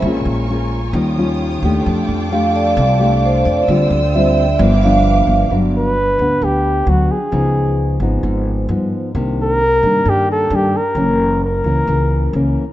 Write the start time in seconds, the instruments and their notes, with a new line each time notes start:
0.02 upright bass A#1, nylon-string guitar A#2 G#3 C#4 F4, violin section F4 A#4 G#5 C#6
0.25 upright bass A#1
0.50 nylon-string guitar G#3 C#4 F4
0.93 upright bass D#2, nylon-string guitar D#3 G3 C#4 F4, violin section C#5 G5 D#6
1.18 nylon-string guitar G3 C#4 F4
1.63 upright bass D#2, nylon-string guitar A3 D4 G4
1.84 upright bass F2, nylon-string guitar F3, violin section A4 D6
2.08 upright bass F2
2.32 nylon-string guitar A3 D4 G4, vibraphone F5
2.56 vibraphone D5
2.77 upright bass C2, nylon-string guitar C3
3.00 nylon-string guitar A3 D4 G4
3.26 vibraphone C5
3.45 upright bass F2, vibraphone D5
3.66 upright bass D2, nylon-string guitar D3 G3 C4, violin section C5 G5 E6
3.71 nylon-string guitar F4
3.90 upright bass D2
4.14 nylon-string guitar G3 C4 F4, vibraphone E5
4.59 upright bass G1, nylon-string guitar G2 F3 B3 D4, violin section B4 F5 D6
4.83 nylon-string guitar F3 B3 D4, vibraphone F5
5.27 upright bass G1
5.50 upright bass G1, nylon-string guitar G2 F#3 B3 D4
5.77 flugelhorn B4
6.19 upright bass D2, nylon-string guitar B3 D4
6.42 upright bass D2, nylon-string guitar D3, flugelhorn G4
6.87 upright bass D2, nylon-string guitar F#3 B3 D4, flugelhorn F#4
7.11 flugelhorn G#4
7.32 upright bass C#2, nylon-string guitar C#3 F3 B3 D#4
8.00 upright bass G#1, nylon-string guitar F3 B3 D#4
8.23 upright bass G#1, nylon-string guitar G#2
8.69 upright bass G2, nylon-string guitar F3 B3 D#4
9.15 upright bass C2, nylon-string guitar C3 D#3 A#3 D4
9.43 flugelhorn A#4
9.83 upright bass G2, nylon-string guitar D#3 A#3 D4
10.05 upright bass G2, nylon-string guitar G2, flugelhorn G4
10.32 flugelhorn A4
10.50 upright bass G2, nylon-string guitar D#3 A#3 D4
10.55 flugelhorn G4
10.77 flugelhorn A#4
10.95 upright bass F#1, nylon-string guitar F#2 E3 A#3 C#4
11.45 flugelhorn A#4
11.64 upright bass C#2, nylon-string guitar E3 A#3 C#4
11.87 upright bass C#2, nylon-string guitar C#3
12.33 upright bass C#2, nylon-string guitar E3 A#3 C#4